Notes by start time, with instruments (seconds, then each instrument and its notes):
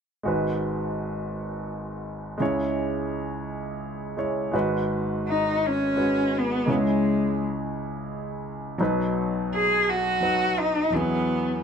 0.23 grand piano G#1 G#2 G#3 F#4
0.28 grand piano B4
2.38 grand piano C#2 C#3 G#3 E4
2.42 grand piano C#5
4.17 grand piano G#3 E4 C#5
4.52 grand piano G#1 G#2 G#3 F#4 B4
5.28 cello D#4
5.66 cello C#4
5.96 grand piano G#3 F#4 B4
6.38 cello B3
6.66 grand piano C#2 C#3 G#3 E4 C#5
6.74 cello G#3
8.78 grand piano B1 B2 F#3 D#4
8.82 grand piano B4
9.55 cello G#4
9.89 cello F#4
10.21 grand piano F#3 D#4 B4
10.59 cello D#4
10.90 grand piano E2 F#3 E4
10.95 cello B3, grand piano G#4